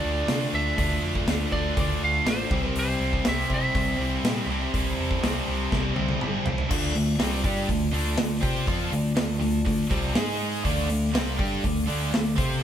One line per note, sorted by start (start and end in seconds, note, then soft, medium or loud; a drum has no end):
0.00 0.21 D2 medium
0.00 0.25 D3 medium
0.00 0.76 D3 medium
0.00 0.28 D3 medium
0.00 0.27 A3 medium
0.00 0.77 A3 medium
0.00 0.27 D4 medium
0.00 0.78 D4 medium
0.00 2.46 F4 medium
0.00 0.50 D5 loud
0.00 2.46 D5 medium
0.00 2.46 A5 medium
0.05 0.29 A3 medium
0.05 0.29 D4 medium
0.05 0.30 F4 medium
0.28 0.45 C3 medium
0.28 0.52 D3 medium
0.28 0.53 A3 medium
0.28 0.53 D4 loud
0.28 0.55 F4 loud
0.28 snare loud
0.28 open hi-hat medium
0.53 0.70 D2 medium
0.53 0.78 D3 medium
0.53 0.78 A3 medium
0.53 0.79 D4 medium
0.53 0.79 F4 loud
0.53 1.49 E5 loud
0.75 0.95 D2 medium
0.75 1.50 D3 medium
0.75 1.02 A3 medium
0.75 kick loud
0.75 open hi-hat medium
0.80 1.02 D3 loud
0.80 1.03 D4 medium
0.80 1.03 F4 loud
1.02 1.19 F2 medium
1.02 1.26 D3 medium
1.02 1.27 A3 medium
1.02 1.28 D4 medium
1.02 1.28 F4 medium
1.15 kick medium
1.26 1.44 D2 medium
1.26 1.51 D3 medium
1.26 1.52 A3 medium
1.26 1.52 D4 loud
1.26 1.53 F4 loud
1.26 snare loud
1.26 open hi-hat medium
1.52 1.70 D2 loud
1.52 1.76 D3 medium
1.52 1.76 A3 loud
1.52 1.77 D4 loud
1.52 1.78 F4 loud
1.52 1.78 D5 loud
1.52 kick medium
1.77 1.94 D2 medium
1.77 2.01 D3 medium
1.77 2.02 A3 loud
1.77 2.02 D4 loud
1.77 2.03 F4 loud
1.77 2.02 D5 medium
1.77 kick loud
1.77 open hi-hat medium
2.01 2.18 D2 medium
2.01 2.25 D3 medium
2.01 2.25 A3 medium
2.01 2.26 D4 medium
2.01 2.26 F4 medium
2.01 2.29 F5 loud
2.25 2.43 A1 medium
2.25 2.50 D3 medium
2.25 2.50 A3 loud
2.25 2.50 D4 loud
2.25 2.50 F4 medium
2.25 2.78 C5 medium
2.25 snare loud
2.25 open hi-hat medium
2.51 2.68 C2 medium
2.51 2.74 C3 loud
2.51 2.74 E3 medium
2.51 2.75 G3 loud
2.51 2.76 C4 loud
2.51 6.67 E4 medium
2.51 2.76 E4 loud
2.51 6.67 C5 medium
2.51 4.48 G5 medium
2.51 kick loud
2.74 2.92 C2 loud
2.74 2.99 C3 loud
2.74 3.00 E3 medium
2.74 3.00 G3 loud
2.74 3.01 C4 loud
2.74 3.01 E4 loud
2.74 open hi-hat medium
2.79 3.28 C5 loud
3.00 3.17 C2 medium
3.00 3.25 C3 medium
3.00 3.26 E3 medium
3.00 3.26 G3 medium
3.00 3.27 C4 loud
3.00 3.27 E4 medium
3.13 kick medium
3.25 3.42 C2 loud
3.25 3.50 C3 medium
3.25 3.50 E3 medium
3.25 3.51 G3 loud
3.25 3.51 C4 medium
3.25 3.51 E4 medium
3.25 3.52 E5 loud
3.25 snare loud
3.25 open hi-hat medium
3.50 3.74 C3 loud
3.50 3.67 C3 medium
3.50 3.74 E3 medium
3.50 3.74 G3 loud
3.50 3.75 C4 loud
3.50 3.75 E4 loud
3.50 kick medium
3.54 5.23 E5 medium
3.75 3.92 C2 loud
3.75 3.99 C3 medium
3.75 3.99 E3 medium
3.75 4.00 G3 loud
3.75 4.00 C4 loud
3.75 4.01 E4 loud
3.75 kick loud
3.75 open hi-hat medium
3.97 4.16 C2 medium
3.97 4.23 C3 medium
3.97 4.23 E3 medium
3.97 4.24 G3 medium
3.97 4.46 C4 medium
4.01 4.25 C4 medium
4.01 4.25 E4 loud
4.23 4.40 A#2 medium
4.23 4.48 C3 medium
4.23 4.48 E3 medium
4.23 4.49 G3 loud
4.23 4.50 C4 medium
4.23 4.50 E4 medium
4.23 snare loud
4.23 open hi-hat medium
4.46 4.64 C2 medium
4.46 4.73 C3 medium
4.46 4.74 E3 loud
4.46 4.74 G3 medium
4.51 4.74 C4 medium
4.51 4.75 E4 medium
4.51 6.70 A5 medium
4.74 4.90 C2 loud
4.74 4.99 C3 loud
4.74 4.99 E3 loud
4.74 4.99 G3 loud
4.74 5.00 C4 loud
4.74 5.00 E4 loud
4.74 kick loud
4.74 open hi-hat medium
4.98 5.15 E2 medium
4.98 5.22 C3 medium
4.98 5.23 E3 medium
4.98 5.24 G3 medium
4.98 5.23 C4 medium
4.98 5.24 E4 loud
5.11 kick medium
5.22 5.39 C2 medium
5.22 5.46 C3 medium
5.22 5.47 E3 loud
5.22 5.47 G3 loud
5.22 5.48 C4 loud
5.22 5.48 E4 medium
5.22 6.19 D5 medium
5.22 snare loud
5.22 open hi-hat medium
5.47 5.64 C2 medium
5.47 5.70 C3 medium
5.47 5.71 E3 medium
5.47 5.72 G3 loud
5.47 5.73 C4 loud
5.47 5.73 E4 loud
5.72 5.89 C2 loud
5.72 5.95 C3 loud
5.72 5.96 E3 loud
5.72 5.96 G3 loud
5.72 5.97 C4 loud
5.72 5.98 E4 loud
5.72 kick loud
5.72 snare medium
5.94 6.14 C2 medium
5.94 6.19 C3 medium
5.94 6.21 E3 medium
5.94 6.21 G3 medium
5.94 6.43 C4 medium
5.94 high tom medium
5.98 6.21 C4 medium
5.98 6.22 E4 medium
6.09 high tom medium
6.21 6.38 G1 medium
6.21 6.44 C3 medium
6.21 6.45 E3 loud
6.21 6.45 G3 loud
6.21 6.46 C4 medium
6.21 6.46 E4 loud
6.21 mid tom medium
6.45 6.63 C2 medium
6.45 6.69 C3 medium
6.45 6.68 E3 medium
6.45 6.69 G3 medium
6.45 6.70 C4 medium
6.45 6.70 E4 medium
6.45 floor tom loud
6.58 floor tom medium
6.69 6.93 D2 loud
6.69 6.94 D3 loud
6.69 6.93 A3 loud
6.69 6.94 D4 loud
6.69 10.13 F4 medium
6.69 10.13 D5 medium
6.69 kick loud
6.69 crash loud
6.74 10.14 A5 medium
6.94 7.17 D2 medium
6.94 7.15 D3 medium
6.94 7.14 A3 medium
6.94 open hi-hat medium
7.19 7.42 C2 loud
7.19 7.43 C3 medium
7.19 7.42 G3 loud
7.19 7.43 C4 loud
7.19 snare loud
7.19 open hi-hat medium
7.43 7.67 G2 loud
7.43 7.68 G3 medium
7.43 7.68 D4 medium
7.43 7.68 G4 loud
7.43 kick loud
7.43 open hi-hat medium
7.68 7.92 D2 medium
7.68 7.88 D3 medium
7.68 7.88 A3 medium
7.68 kick medium
7.68 open hi-hat medium
7.91 8.16 D2 medium
7.91 8.16 D3 medium
7.91 8.17 A3 medium
7.91 8.17 D4 loud
7.91 open hi-hat medium
8.17 8.41 D2 medium
8.17 8.38 D3 medium
8.17 8.38 A3 medium
8.17 snare loud
8.17 open hi-hat medium
8.40 8.66 C3 medium
8.40 8.65 C4 medium
8.40 8.66 G4 loud
8.40 8.66 C5 loud
8.40 kick loud
8.40 open hi-hat medium
8.66 8.91 F2 loud
8.66 8.90 F3 loud
8.66 8.91 C4 loud
8.66 8.91 F4 medium
8.66 kick loud
8.66 open hi-hat medium
8.91 9.15 D2 medium
8.91 9.11 D3 medium
8.91 9.11 A3 medium
8.91 open hi-hat medium
9.16 9.40 D2 medium
9.16 9.36 D3 medium
9.16 9.36 A3 medium
9.16 snare loud
9.16 open hi-hat medium
9.40 9.64 D2 medium
9.40 9.60 D3 medium
9.40 9.61 A3 medium
9.40 open hi-hat medium
9.65 9.89 D2 medium
9.65 9.85 D3 medium
9.65 9.85 A3 medium
9.65 kick loud
9.65 open hi-hat medium
9.89 10.14 C2 medium
9.89 10.14 C3 medium
9.89 10.14 G3 medium
9.89 10.14 C4 medium
9.89 kick loud
9.89 open hi-hat medium
10.14 10.61 G#2 medium
10.14 10.64 G#3 medium
10.14 10.64 D#4 medium
10.14 10.64 G#4 medium
10.14 10.64 G#4 loud
10.14 10.64 D#5 medium
10.14 10.64 D#6 medium
10.14 snare loud
10.14 open hi-hat medium
10.40 open hi-hat medium
10.63 10.88 D2 loud
10.63 10.87 D3 loud
10.63 10.88 A3 loud
10.63 10.89 D4 loud
10.63 12.63 A4 medium
10.63 12.63 F5 medium
10.63 12.59 D6 medium
10.63 kick loud
10.63 open hi-hat medium
10.89 11.13 D2 medium
10.89 11.09 D3 medium
10.89 11.09 A3 medium
10.89 open hi-hat medium
11.13 11.38 C2 loud
11.13 11.38 C3 loud
11.13 11.36 G3 loud
11.13 11.37 C4 loud
11.13 snare loud
11.13 open hi-hat medium
11.37 11.62 G2 loud
11.37 11.62 G3 medium
11.37 11.62 D4 loud
11.37 11.62 G4 loud
11.37 kick loud
11.37 open hi-hat medium
11.63 11.87 D2 medium
11.63 11.83 D3 medium
11.63 11.84 A3 medium
11.63 kick loud
11.63 open hi-hat loud
11.86 12.11 D2 loud
11.86 12.11 D3 loud
11.86 12.11 A3 medium
11.86 12.12 D4 loud
11.86 open hi-hat medium
12.12 12.36 D2 medium
12.12 12.32 D3 medium
12.12 12.33 A3 medium
12.12 snare loud
12.12 open hi-hat medium
12.36 12.61 C3 medium
12.36 12.60 C4 loud
12.36 12.62 G4 medium
12.36 12.62 C5 medium
12.36 kick loud
12.36 open hi-hat medium